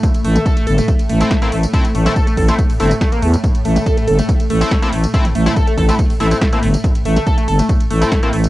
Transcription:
<<
  \new Staff \with { instrumentName = "Analog polysynth" } { \time 4/4 \key a \minor \tempo 4 = 141 r2 r8. <a c' e'>16 r16 <a c' e'>16 r8 | <a c' e'>16 r8 <a c' e'>16 r8. <a c' e'>16 r8 <a c' e'>16 r4 r16 | r2 r8. <a c' e'>16 r16 <a c' e'>16 r8 | <a c' e'>16 r8 <a c' e'>16 r8. <a c' e'>16 r8 <a c' e'>16 <a c' e'>16 r16 <a c' e'>16 r8 |
r2 r8. <a c' e'>16 r16 <a c' e'>16 r8 | }
  \new Staff \with { instrumentName = "Analog synth lead" } { \time 4/4 \key a \minor r8 a16 a16 a'16 a16 a'16 a16 r8 a16 r16 a16 bes16 a16 r16 | r8 a16 a16 a'16 a16 a'16 a16 r8 a16 r16 a16 bes16 a16 r16 | r8 a16 a16 a'16 a16 a'16 a16 r8 a16 r16 a16 bes16 a16 r16 | r8 a16 a16 a'16 a16 a'16 a16 r8 a16 r16 a16 bes16 a16 r16 |
r8 a16 a16 a'16 a16 a'16 a16 r8 a16 r16 a16 bes16 a16 r16 | }
  \new Staff \with { instrumentName = "Synth drone" } { \clef bass \time 4/4 \key a \minor <a, a>1~ | <a, a>1~ | <a, a>1~ | <a, a>1 |
<a, a>1 | }
  \new Staff \with { instrumentName = "FM bass" } { \clef bass \time 4/4 \key a \minor r8 a,,8 r8 g,,8 r8 a,,8 r8 a,,8 | r8 a,,8 r8 a,,8 r8 g,,8 r8 e,8 | r8 a,,8 r8 g,,8 r8 a,,8 r8 a,,8 | r8 a,,8 r8 a,,8 r8 a,,8 r8 g,,8 |
r8 a,,8 r8 g,,8 r8 a,,8 r8 a,,8 | }
  \new DrumStaff \with { instrumentName = "Drums" } \drummode { \time 4/4 <hh bd cymr tamb>16 <hh cymr tamb>16 <hho cymr>16 <hh cymr tamb toml>16 <hh bd cymr tamb>16 <hh cymr tamb>16 <hho cymr>16 <hh cymr tamb>16 <hh bd cymr tamb>16 <hh cymr tamb>16 <hho cymr>16 <hh cymr tamb>16 <hh bd cymr sn tamb>16 <hh cymr tamb>16 <hho cymr>16 <hh cymr tamb>16 | <hh bd cymr tamb>16 <hh cymr tamb>16 <hho cymr>16 <hh cymr tamb toml>16 <hh bd cymr tamb>16 <hh cymr tamb>16 <hho bd cymr>16 <hh cymr tamb>16 <hh bd cymr tamb>16 <hho cymr tamb>16 <hho cymr>16 <hh cymr tamb>16 <hh bd cymr sn tamb>16 <hh cymr tamb>16 <hho cymr>16 <hh cymr tamb>16 | <hh bd cymr tamb>16 <hh cymr tamb>16 <hho cymr>16 <hh cymr tamb toml>16 <hh bd cymr tamb>16 <hh cymr tamb>16 <hho cymr>16 <hh cymr tamb>16 <hh bd cymr tamb>16 <hh cymr tamb>16 <hho cymr>16 <hh cymr tamb>16 <hh bd cymr sn tamb>16 <hh cymr tamb>16 <hho cymr>16 <hh cymr tamb>16 | <hh bd cymr tamb>16 <hh cymr tamb toml>16 <hho cymr>16 <hh cymr tamb toml>16 <hh bd cymr tamb>16 <hh cymr tamb>16 <hho bd cymr toml>16 <hh cymr tamb>16 <hh bd cymr tamb>16 <hho cymr tamb>16 <hho cymr>16 <hh cymr tamb>16 <hh bd cymr sn tamb>16 <hh cymr tamb>16 <hho cymr>16 <hh cymr tamb>16 |
<hh bd cymr tamb>16 <hh cymr tamb>16 <hho cymr>16 <hh cymr tamb toml>16 <hh bd cymr tamb>16 <hh cymr tamb>16 <hho cymr>16 <hh cymr tamb>16 <hh bd cymr tamb>16 <hh cymr tamb>16 <hho cymr>16 <hh cymr tamb>16 <hh bd cymr sn tamb>16 <hh cymr tamb>16 <hho cymr>16 <hh cymr tamb>16 | }
>>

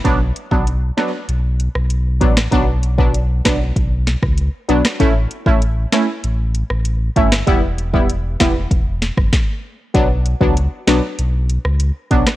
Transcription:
<<
  \new Staff \with { instrumentName = "Synth stab" } { \time 4/4 \key b \minor \tempo 4 = 97 <fis b d'>16 r8 <fis b d'>16 r8 <fis b d'>16 r4. r16 <fis b d'>16 r16 | <fis b d'>16 r8 <fis b d'>16 r8 <fis b d'>16 r4. r16 <fis b d'>16 r16 | <a cis' e'>16 r8 <a cis' e'>16 r8 <a cis' e'>16 r4. r16 <a cis' e'>16 r16 | <g b e'>16 r8 <g b e'>16 r8 <g b e'>16 r2 r16 |
<fis b d'>16 r8 <fis b d'>16 r8 <fis b d'>16 r4. r16 <fis b d'>16 r16 | }
  \new Staff \with { instrumentName = "Sub bass" } { \clef bass \time 4/4 \key b \minor b,,8 r16 b,,8. r8 b,,8. b,,8. a,,8 | b,,4. b,,8 b,,8. cis,8 r16 b,,16 r16 | a,,8 r16 a,,8. r8 a,,8. a,,8. g,,8 | e,,4. e,,8 e,,8. fis,,16 r4 |
b,,8. cis,8 r16 b,,16 r16 b,,8. cis,8 r16 b,,16 r16 | }
  \new DrumStaff \with { instrumentName = "Drums" } \drummode { \time 4/4 <hh bd>8 hh16 bd16 hh8 <hh ss sn>8 hh8 hh16 ss16 hh8 <hh bd>16 <ss sn>16 | <hh bd>8 hh16 bd16 hh8 <hh bd ss sn>8 <hh bd>8 <hh sn>16 <bd ss>16 hh8 hh16 <ss sn>16 | <hh bd>8 hh16 bd16 hh8 <hh ss sn>8 hh8 hh16 ss16 hh8 <hh bd>16 <ss sn>16 | <hh bd>8 hh16 bd16 hh8 <hh bd ss sn>8 <hh bd>8 <hh sn>16 <bd ss>16 <bd sn>4 |
<hh bd>8 hh16 bd16 hh8 <hh ss sn>8 hh8 hh16 ss16 hh8 <hh bd>16 <ss sn>16 | }
>>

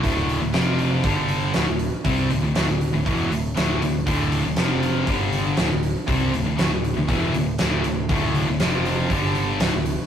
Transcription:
<<
  \new Staff \with { instrumentName = "Distorted electric guitar" } { \clef bass \time 4/4 \key d \minor \tempo 4 = 119 <d, a, d>8. <d, a,>16 <f, c f>4 <g, d g>4 <d, a,>16 <d, a,>8 r16 | <c g c'>8 <d, a,>16 <d, a,>16 <d, a,>16 <d, a,>8 <d, a,>16 <e, b, e>8 <d, a,>8 <d, a, d>8 <d, a,>8 | <d, a, d>8. <d, a,>16 <f, c f>4 <g, d g>4 <d, a,>16 <d, a,>8 r16 | <c g c'>8 <d, a,>16 <d, a,>16 <d, a,>16 <d, a,>8 <d, a,>16 <e, b, e>8 <d, a,>8 <d, a, d>8 <d, a,>8 |
<d, a, d>8. <d, a,>16 <f, c f>4 <g, d g>4 <d, a,>16 <d, a,>8 r16 | }
  \new Staff \with { instrumentName = "Distorted electric guitar" } { \clef bass \time 4/4 \key d \minor <d, a, d>8. <d, a,>16 <f, c f>4 <g, d g>4 <d, a,>16 <d, a,>8 r16 | <c g c'>8 <d, a,>16 <d, a,>16 <d, a,>16 <d, a,>8 <d, a,>16 <e, b, e>8 <d, a,>8 <d, a, d>8 <d, a,>8 | <d, a, d>8. <d, a,>16 <f, c f>4 <g, d g>4 <d, a,>16 <d, a,>8 r16 | <c g c'>8 <d, a,>16 <d, a,>16 <d, a,>16 <d, a,>8 <d, a,>16 <e, b, e>8 <d, a,>8 <d, a, d>8 <d, a,>8 |
<d, a, d>8. <d, a,>16 <f, c f>4 <g, d g>4 <d, a,>16 <d, a,>8 r16 | }
  \new Staff \with { instrumentName = "Overdriven electric guitar" } { \clef bass \time 4/4 \key d \minor <d, a, d>8. <d, a,>16 <f, c f>4 <g, d g>4 <d, a,>16 <d, a,>8 r16 | <c g c'>8 <d, a,>16 <d, a,>16 <d, a,>16 <d, a,>8 <d, a,>16 <e, b, e>8 <d, a,>8 <d, a, d>8 <d, a,>8 | <d, a, d>8. <d, a,>16 <f, c f>4 <g, d g>4 <d, a,>16 <d, a,>8 r16 | <c g c'>8 <d, a,>16 <d, a,>16 <d, a,>16 <d, a,>8 <d, a,>16 <e, b, e>8 <d, a,>8 <d, a, d>8 <d, a,>8 |
<d, a, d>8. <d, a,>16 <f, c f>4 <g, d g>4 <d, a,>16 <d, a,>8 r16 | }
  \new Staff \with { instrumentName = "Picked electric bass" } { \clef bass \time 4/4 \key d \minor d,,8. d,,16 f,,4 g,,4 d,,16 d,,8 r16 | c,8 d,,16 d,,16 d,,16 d,,8 d,,16 e,,8 d,,8 d,,8 d,,8 | d,,8. d,,16 f,,4 g,,4 d,,16 d,,8 r16 | c,8 d,,16 d,,16 d,,16 d,,8 d,,16 e,,8 d,,8 d,,8 d,,8 |
d,,8. d,,16 f,,4 g,,4 d,,16 d,,8 r16 | }
  \new DrumStaff \with { instrumentName = "Drums" } \drummode { \time 4/4 <hho bd>8 hho8 <hho sn>8 hho8 <hho bd>8 hho8 <hho sn>8 hho8 | <hho bd>8 hho8 <hho sn>8 hho8 <hho bd>8 hho8 <hho sn>8 hho8 | <hho bd>8 hho8 <hho sn>8 hho8 <hho bd>8 hho8 <hho sn>8 hho8 | <hho bd>8 hho8 <hho sn>8 hho8 <hho bd>8 hho8 <hho sn>8 hho8 |
<hho bd>8 hho8 <hho sn>8 hho8 <hho bd>8 hho8 <hho sn>8 hho8 | }
>>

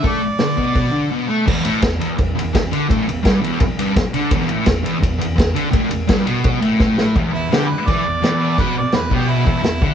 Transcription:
<<
  \new Staff \with { instrumentName = "Harmonica" } { \time 4/4 \key d \lydian \tempo 4 = 169 d''2. r4 | r1 | r1 | r1 |
r1 | r8 e'8 g'8 b'8 d''2 | b'8 d''8 b'8 g'8 e'2 | }
  \new Staff \with { instrumentName = "Distorted electric guitar" } { \clef bass \time 4/4 \key d \lydian a8 r8 d8 b,4 d8 b,8 a8 | e,8 a,8 e,8 e,8 e,8 e,8 e,8 d8 | a,8 e,8 g,8 e,8 r8 g,8 r8 d8 | e,8 a,8 e,8 e,8 e,8 e,8 e,8 d8 |
a,8 e,8 g,8 b,4 a,4. | e,8 e,8 d8 r8 e8 e,8 e,4 | b,8 r8 e,8 b,4 e,8 e,8 d8 | }
  \new DrumStaff \with { instrumentName = "Drums" } \drummode { \time 4/4 <hho bd>4 <hho sn>8 bd8 <hho bd>4 r4 | <cymc bd>8 cymr8 <bd cymr sn>8 cymr8 <bd cymr>8 cymr8 <bd cymr sn>8 cymr8 | <bd cymr>8 cymr8 <bd cymr sn>8 cymr8 <bd cymr>8 cymr8 <bd cymr sn>8 cymr8 | <bd cymr>8 cymr8 <bd cymr sn>8 cymr8 <bd cymr>8 cymr8 <bd cymr sn>8 cymr8 |
<bd cymr>8 cymr8 <bd cymr sn>8 cymr8 <bd cymr>8 cymr8 <bd sn>8 sn8 | <cymc bd>4 <cymc sn>4 <cymc bd>4 <cymc sn>4 | <cymc bd>4 <cymc sn>8 bd8 cymc8 bd8 <cymc sn>8 bd8 | }
>>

